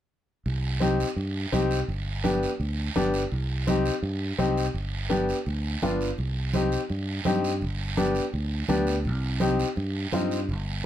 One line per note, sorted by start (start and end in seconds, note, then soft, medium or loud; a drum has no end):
0.46 1.03 C2 medium
0.46 high conga soft
0.46 long guiro medium
0.80 1.06 C4 medium
0.80 1.06 D#4 medium
0.80 1.06 G4 medium
0.80 high conga medium
0.80 short guiro medium
1.00 short guiro medium
1.16 1.45 G2 medium
1.16 high conga soft
1.16 long guiro medium
1.52 1.81 C2 medium
1.52 1.78 C4 medium
1.52 1.78 D#4 medium
1.52 1.78 G4 medium
1.52 high conga medium
1.52 short guiro medium
1.71 short guiro medium
1.88 2.46 G1 medium
1.88 high conga soft
1.88 long guiro medium
2.24 2.49 B3 medium
2.24 2.49 D4 medium
2.24 2.49 G4 medium
2.24 high conga medium
2.24 short guiro medium
2.43 short guiro medium
2.60 2.89 D2 medium
2.60 high conga soft
2.60 long guiro medium
2.96 3.25 G1 medium
2.96 3.21 B3 medium
2.96 3.21 D4 medium
2.96 3.21 G4 medium
2.96 high conga medium
2.96 short guiro medium
3.14 short guiro medium
3.32 3.89 C2 medium
3.32 high conga soft
3.32 long guiro medium
3.67 3.93 C4 medium
3.67 3.93 D#4 medium
3.67 3.93 G4 medium
3.67 high conga medium
3.67 short guiro medium
3.86 short guiro medium
4.03 4.32 G2 medium
4.03 high conga soft
4.03 long guiro medium
4.38 4.68 C2 medium
4.38 4.64 C4 medium
4.38 4.64 D#4 medium
4.38 4.64 G4 medium
4.38 high conga medium
4.38 short guiro medium
4.57 short guiro medium
4.74 5.32 G1 medium
4.74 high conga soft
4.74 long guiro medium
5.09 5.35 B3 medium
5.09 5.36 D4 medium
5.09 5.36 G4 medium
5.09 high conga medium
5.09 short guiro medium
5.29 short guiro medium
5.46 5.75 D2 medium
5.46 high conga soft
5.46 long guiro medium
5.82 6.11 G1 medium
5.82 6.08 B3 medium
5.82 6.08 D4 medium
5.82 6.08 F4 medium
5.82 high conga medium
5.82 short guiro medium
6.01 short guiro medium
6.18 6.76 C2 medium
6.18 high conga soft
6.18 long guiro medium
6.54 6.79 C4 medium
6.54 6.80 D#4 medium
6.54 6.80 G4 medium
6.54 high conga medium
6.54 short guiro medium
6.72 short guiro medium
6.90 7.19 G2 medium
6.90 high conga soft
6.90 long guiro medium
7.25 7.64 G2 medium
7.25 7.51 C4 medium
7.25 7.51 D#4 medium
7.25 7.51 G4 medium
7.25 high conga medium
7.25 short guiro medium
7.44 short guiro medium
7.61 8.19 G1 medium
7.61 high conga soft
7.61 long guiro medium
7.97 8.23 B3 medium
7.97 8.23 D4 medium
7.97 8.23 G4 medium
7.97 high conga medium
7.97 short guiro medium
8.15 short guiro medium
8.33 8.62 D2 medium
8.33 high conga soft
8.33 long guiro medium
8.69 9.07 D2 medium
8.69 8.94 B3 medium
8.69 8.94 D4 medium
8.69 8.94 G4 medium
8.69 high conga medium
8.69 short guiro medium
8.87 short guiro medium
9.04 9.63 C2 medium
9.04 high conga soft
9.04 long guiro medium
9.40 9.66 C4 medium
9.40 9.66 D#4 medium
9.40 9.66 G4 medium
9.40 high conga medium
9.40 short guiro medium
9.60 short guiro medium
9.76 10.06 G2 loud
9.76 high conga soft
9.76 long guiro medium
10.12 10.50 G2 medium
10.12 10.38 C4 medium
10.12 10.38 D#4 medium
10.12 10.38 F4 medium
10.12 high conga medium
10.12 short guiro medium
10.31 short guiro medium
10.49 10.86 G1 medium
10.49 high conga soft
10.49 long guiro medium